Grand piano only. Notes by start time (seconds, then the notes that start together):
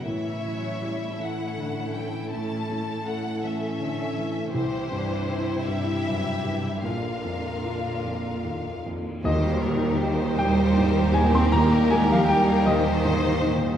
0.05 A2
0.44 E3
0.82 E4
1.20 E3
1.57 D3
1.95 E3
2.33 A2
2.70 A3
3.07 E4
3.43 E3
3.80 D3
4.17 E3
4.54 C2
4.92 G2
5.29 E4
5.67 G2
6.06 F#2
6.44 G2
6.83 A#1
7.24 F2
7.64 F4
8.05 F2
8.45 D#2
8.86 F2
9.24 D#2 D#5
9.63 A#2
10.01 G4
10.38 A#2 G5
10.77 G#2
11.14 A#2 G#5
11.35 C6
11.52 D#2 A#5
11.90 A#3 G#5
12.12 F5
12.28 G4 G5
12.66 A#2 D#5
13.05 G#2
13.45 A#2